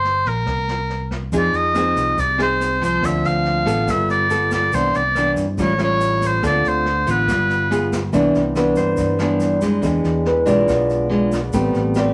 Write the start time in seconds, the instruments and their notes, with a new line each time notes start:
Already playing: fingered electric bass G1, oboe C5
0.04 snare
0.25 fingered electric bass A#1, oboe A#4, kick, snare
0.46 fingered electric bass C2, kick, cross-stick, snare
0.68 snare
0.90 snare
1.11 kick, cross-stick, snare
1.32 fingered electric bass F2, nylon-string guitar F3 C4 D#4 G#4, kick, snare, shaker
1.37 oboe D5
1.53 fingered electric bass F2, oboe D#5, snare, shaker
1.74 nylon-string guitar C4 D#4 G#4, cross-stick, snare, shaker
1.96 fingered electric bass C2, kick, snare, shaker
2.17 fingered electric bass C2, nylon-string guitar C3, oboe D5, kick, snare, shaker
2.38 nylon-string guitar C4 D#4 G#4, cross-stick, snare, shaker
2.42 oboe C5
2.60 snare, shaker
2.81 nylon-string guitar F3 C4, oboe C5, kick, snare, shaker
3.02 fingered electric bass D2, nylon-string guitar D3, oboe E5, kick, cross-stick, snare, shaker
3.24 fingered electric bass D2, oboe F5, snare, shaker
3.45 snare
3.66 fingered electric bass A1, nylon-string guitar B3 F4 A4, kick, snare, shaker
3.87 fingered electric bass G1, nylon-string guitar G3, oboe E5, kick, cross-stick, snare, shaker
4.09 oboe D5, snare, shaker
4.30 nylon-string guitar B3 F4 A4, snare, shaker
4.51 oboe D5, kick, cross-stick, snare, shaker
4.72 fingered electric bass C2, nylon-string guitar C3 E3 B3 D4, oboe C5, kick, snare, shaker
4.94 fingered electric bass C2, oboe D5, snare, shaker
5.15 nylon-string guitar E3 B3 D4, cross-stick, snare, shaker
5.36 fingered electric bass G2, kick, snare, shaker
5.58 fingered electric bass A1, nylon-string guitar A2 G3 C#4 F4, kick, snare, shaker
5.62 oboe C#5
5.78 nylon-string guitar G3 C#4 F4, cross-stick, snare, shaker
5.83 oboe C#5
6.00 snare, shaker
6.21 kick, snare, shaker
6.27 oboe C5
6.43 fingered electric bass D2, nylon-string guitar D3 C4 F4 A4, oboe D5, kick, cross-stick, snare, shaker
6.64 fingered electric bass D2, snare, shaker
6.68 oboe C5
6.86 snare
7.06 fingered electric bass A1, nylon-string guitar B3 F4, kick, snare, shaker
7.10 oboe B4
7.28 fingered electric bass G1, nylon-string guitar G3, kick, cross-stick, snare, shaker
7.49 snare, shaker
7.71 nylon-string guitar B3 F4 G#4, snare, shaker
7.92 kick, cross-stick, snare, shaker
8.12 fingered electric bass C2, nylon-string guitar C3 E3 B3 D4, grand piano E3 B3 D4, kick, snare, shaker
8.34 fingered electric bass C2, snare, shaker
8.56 nylon-string guitar E3 B3 D4, grand piano B4, cross-stick, snare, shaker
8.76 fingered electric bass G2, grand piano C5, kick, snare, shaker
8.97 fingered electric bass G2, nylon-string guitar G2, kick, snare, shaker
9.19 nylon-string guitar E3 B3 D4, cross-stick, snare, shaker
9.40 snare, shaker
9.61 nylon-string guitar G#3 D4, kick, snare, shaker
9.82 fingered electric bass E2, nylon-string guitar E3, grand piano G#3 D4, kick, cross-stick, snare, shaker
10.04 fingered electric bass E2, snare, shaker
10.25 grand piano B4, snare
10.46 fingered electric bass B1, nylon-string guitar G#3 D4 F4, grand piano D5, kick, snare, shaker
10.67 fingered electric bass B1, nylon-string guitar B2, kick, cross-stick, snare, shaker
10.90 snare, shaker
11.10 nylon-string guitar G#3 D4 F4, snare
11.32 kick, cross-stick, snare, shaker
11.53 fingered electric bass A1, grand piano G3 B3 C4, nylon-string guitar A3 C4 G4 B4, kick, snare, shaker
11.74 fingered electric bass A1, snare, shaker
11.94 nylon-string guitar C4 G4 B4, grand piano D5, cross-stick, snare, shaker